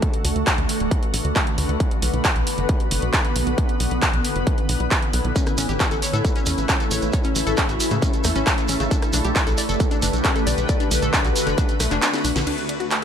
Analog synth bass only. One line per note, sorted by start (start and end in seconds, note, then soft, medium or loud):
0.25 0.33 D2 medium
0.36 0.44 D2 medium
0.58 0.66 D2 medium
0.80 0.88 D1 medium
1.13 1.22 A1 medium
1.25 1.33 D2 medium
1.58 1.66 D2 loud
1.69 1.77 D2 medium
2.02 2.11 B1 medium
2.13 2.22 B1 medium
2.36 2.44 B1 medium
2.58 2.66 F#1 medium
2.91 2.99 F#1 medium
3.02 3.11 B1 medium
3.36 3.44 B1 loud
3.47 3.55 B1 medium
3.80 3.88 B1 loud
3.91 3.99 B1 medium
4.13 4.22 B1 medium
4.36 4.44 F#1 medium
4.69 4.77 B1 medium
4.80 4.88 B1 medium
5.13 5.22 B1 medium
5.24 5.33 B1 medium
5.58 5.66 A1 loud
5.69 5.77 A1 medium
5.91 5.99 A1 medium
6.13 6.22 A2 medium
6.47 6.55 E2 medium
6.58 6.66 A1 medium
6.91 6.99 A1 loud
7.02 7.11 A1 medium
7.36 7.44 A1 medium
7.47 7.55 A1 medium
7.69 7.77 A1 medium
7.91 7.99 A2 medium
8.25 8.33 E2 medium
8.36 8.44 A1 medium
8.69 8.77 A1 medium
8.80 8.88 A1 medium
9.13 9.22 B1 loud
9.25 9.33 B1 medium
9.47 9.55 B1 medium
9.69 9.77 F#1 medium
10.02 10.11 F#1 medium
10.13 10.22 B1 medium
10.47 10.55 B1 loud
10.58 10.66 B1 medium
10.91 10.99 B1 loud
11.02 11.11 B1 medium
11.25 11.33 B1 medium
11.47 11.55 F#1 medium
11.80 11.88 B1 medium
11.91 11.99 F#1 medium
12.24 12.33 B1 loud
12.36 12.44 B1 medium
12.47 13.04 D2 medium